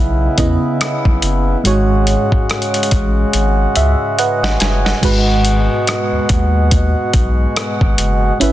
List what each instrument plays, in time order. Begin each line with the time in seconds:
Already playing: sub bass B1, fm electric piano C#3 B3 E4 D#5, accordion C#3 B3 E4
0.38 sub bass E2, fm electric piano C#3 B3 E4 D#5, kick, closed hi-hat
0.81 cross-stick, closed hi-hat
1.05 sub bass B1, kick
1.22 sub bass F#1, closed hi-hat
1.64 sub bass G#1, fm electric piano G#2 G#3 F#4 C#5, accordion C#3 G#3 F#4, closed hi-hat
2.07 closed hi-hat
2.32 kick
2.50 cross-stick, closed hi-hat
2.62 closed hi-hat
2.74 closed hi-hat
2.83 closed hi-hat
2.91 sub bass A1, kick, closed hi-hat
3.33 sub bass G#1, closed hi-hat
3.76 sub bass C#2, fm electric piano E5, closed hi-hat
4.19 fm electric piano B4 D#5 F#5, closed hi-hat
4.43 sub bass G#1, fm electric piano D#5 F#5, snare
4.60 sub bass F#1, fm electric piano G#5, snare, closed hi-hat
4.85 fm electric piano D#5 F#5, snare
5.01 sub bass G#1, fm electric piano G#2 G#3 F#4 B4, accordion B2 G#3 F#4, kick, closed hi-hat, crash
5.45 closed hi-hat
5.87 cross-stick, closed hi-hat
6.12 sub bass D#2
6.29 sub bass D#2, kick, closed hi-hat
6.71 kick, closed hi-hat
7.13 sub bass B1, kick, closed hi-hat
7.56 cross-stick, closed hi-hat
7.81 sub bass G#1, kick
7.98 sub bass F#1, closed hi-hat
8.40 sub bass G#1, accordion C#3 B3 E4, fm electric piano C#4 E4 B4, closed hi-hat